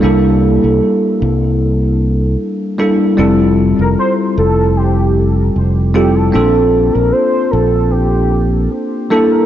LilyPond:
<<
  \new Staff \with { instrumentName = "Soft synth lead" } { \time 4/4 \key bes \lydian \tempo 4 = 76 r1 | r8. bes'16 c''8 a'8 g'4 r8 g'16 a'16~ | a'8. bes'16 c''8 a'8 g'4 r8 a'16 bes'16 | }
  \new Staff \with { instrumentName = "Tine electric piano" } { \time 4/4 \key bes \lydian <g bes d' e' a'>2.~ <g bes d' e' a'>8 <g bes d' e' a'>8 | <g c' e' f' a'>2.~ <g c' e' f' a'>8 <g c' e' f' a'>8 | <bes c' d' f' a'>2.~ <bes c' d' f' a'>8 <g bes d' e' a'>8 | }
  \new Staff \with { instrumentName = "Fingered electric bass" } { \clef bass \time 4/4 \key bes \lydian c,8. c,16 r8 c,4. r4 | f,,8. f,,16 r8 f,,4. f,,4 | bes,,8. bes,,16 r8 bes,,4. r4 | }
>>